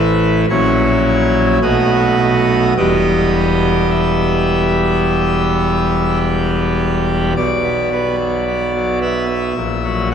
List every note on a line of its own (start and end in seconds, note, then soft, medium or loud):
0.00 0.46 A1 medium
0.00 0.45 A2 medium
0.00 0.45 E3 medium
0.00 0.45 A3 medium
0.00 0.46 E4 medium
0.00 0.41 B4 medium
0.50 1.59 A#1 soft
0.50 1.59 A#2 medium
0.50 1.59 F#3 soft
0.50 1.59 C#4 soft
0.50 1.59 E4 soft
0.50 1.59 C#5 medium
1.62 2.73 B1 medium
1.62 2.73 B2 medium
1.62 2.73 A3 soft
1.62 2.73 B3 soft
1.62 2.73 F#4 soft
1.62 2.73 D#5 medium
2.77 7.33 E1 medium
2.77 7.33 E2 soft
2.77 7.33 G3 soft
2.77 7.33 B3 soft
2.77 7.33 G4 soft
2.77 3.89 D#5 medium
3.90 6.18 E5 medium
7.36 9.53 B1 medium
7.36 9.53 B2 medium
7.36 8.99 D5 medium
7.64 7.89 B3 soft
7.92 8.15 B3 soft
7.92 8.16 B4 soft
8.19 8.44 F#3 soft
8.47 8.72 B3 soft
8.75 9.00 F#3 soft
9.01 9.25 B3 soft
9.01 9.26 B4 soft
9.01 10.08 E5 medium
9.29 9.52 B3 medium
9.56 10.14 A#1 medium
9.56 10.14 A#2 medium
9.84 10.09 F#3 soft